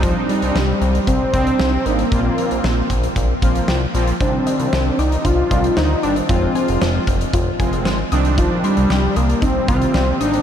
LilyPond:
<<
  \new Staff \with { instrumentName = "Synth arpeggio sound" } { \time 4/4 \key c \minor \tempo 4 = 115 r1 | r1 | d'8 ees''8 c''8 d'''8 d'8 ees''8 c''8 d'''8 | f'8 aes''8 c''8 f'''8 f'8 aes''8 c''8 ees'''8 |
ees'8 c'''8 d''8 ees'''8 ees'8 c'''8 d''8 ees'''8 | }
  \new Staff \with { instrumentName = "Analog polysynth" } { \time 4/4 \key c \minor <g c' d' ees'>4 r4. <g c' d' ees'>8 r8 <g c' d' ees'>8 | <f bes c' f'>4. r4 <f bes c' f'>8 r8 <f bes c' f'>8 | <ees g c' d'>4. r4 <ees g c' d'>8 r8 <ees g c' d'>8 | <f aes c' f'>4. r4 <f aes c' f'>8 r8 <ees g c' d'>8~ |
<ees g c' d'>4 r4. <ees g c' f'>8 r8 <ees g c' ees'>8 | }
  \new Staff \with { instrumentName = "Analog synth lead" } { \time 4/4 \key c \minor f8 g4. c'8 c'4 bes8~ | bes2~ bes8 r4. | c'4. ees'8 f'4 ees'8 d'8 | c'4 r2. |
f8 g16 g8. bes8 c'8 c'4 d'8 | }
  \new Staff \with { instrumentName = "Analog synth bass" } { \clef bass \time 4/4 \key c \minor c,8 r16 c,16 c,8 c,8 c,8 c,8 c,8 aes,,8 | bes,,8 r16 bes,,16 bes,,8 bes,,8 bes,,8 bes,,8 c,8 bes,,8 | c,8 r16 c,16 c,8 c,8 c,8 c,8 d,8 g,,8 | f,,8 r16 f,,16 f,,8 f,,8 f,,8 f,,8 aes,,8 c,8~ |
c,8 r16 c,16 c,8 c,8 c,8 c,8 c,8 aes,,8 | }
  \new DrumStaff \with { instrumentName = "Drums" } \drummode { \time 4/4 <hh bd>8 hh16 hh16 sn8 hh16 hh16 <hh bd>8 <hh bd>16 hh16 sn8 hh16 hh16 | <hh bd>8 hh16 hh16 sn8 <hh bd>16 hh16 <hh bd>8 <hh bd>16 hh16 sn8 hh16 hh16 | <hh bd>8 hh16 hh16 sn8 hh16 hh16 <hh bd>8 <hh bd>16 hh16 sn8 hh16 hh16 | <hh bd>8 hh16 hh16 sn8 <hh bd>16 hh16 <hh bd>8 <hh bd>16 hh16 sn8 hh16 hh16 |
<hh bd>8 hh16 hh16 sn8 hh16 hh16 <hh bd>8 <hh bd>16 hh16 sn8 hh16 hh16 | }
>>